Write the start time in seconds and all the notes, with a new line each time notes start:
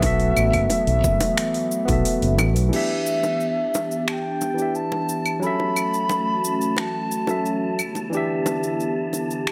Already playing: B1 F#3 A3 E5
0.00 E3 B3 F#4, kick, open hi-hat, high bongo, cabasa
0.04 A4 E5
0.20 open hi-hat
0.37 A1, cabasa, claves
0.53 F#1, kick, open hi-hat, cabasa, claves
0.70 open hi-hat, high bongo, cabasa
0.87 B1, open hi-hat
1.04 F#1, kick, cabasa
1.20 open hi-hat, high bongo, cabasa
1.37 finger snap, open hi-hat, cabasa
1.54 open hi-hat
1.71 cabasa
1.85 B1 B3 F#4, kick, open hi-hat, high bongo, cabasa
1.90 A4 E5
2.05 open hi-hat, cabasa
2.22 F#1, open hi-hat
2.38 A1, high bongo, cabasa, claves
2.56 B1, open hi-hat, cabasa
2.69 E3 B3 D4 G4
2.73 E3 G4 E5 A5, crash, cabasa
3.06 cabasa
3.23 high bongo, cabasa
3.40 cabasa
3.74 high bongo, cabasa
3.91 cabasa
4.08 A5, finger snap, cabasa, claves
4.12 G5
4.41 high bongo, cabasa
4.54 E3 D4
4.58 G4 E5, cabasa
4.75 A5, cabasa
4.92 high bongo
5.09 cabasa
5.26 cabasa, claves
5.40 E3 F#3 A3 C#4 B5, cabasa
5.44 C#4 F#4 A4 E5
5.60 high bongo
5.76 cabasa, claves
5.94 cabasa
6.09 high bongo, cabasa
6.45 cabasa
6.61 cabasa
6.77 A5, finger snap, high bongo, cabasa
7.11 cabasa
7.27 F#3 C#4 A4 E5, high bongo, cabasa
7.46 cabasa
7.78 D3 B3 E4 G4, cabasa, claves
7.95 high bongo, cabasa
8.10 E3 D4, cabasa
8.15 G4 E5
8.46 high bongo, cabasa
8.63 cabasa
8.80 cabasa
9.13 high bongo, cabasa
9.31 cabasa
9.47 finger snap, cabasa, claves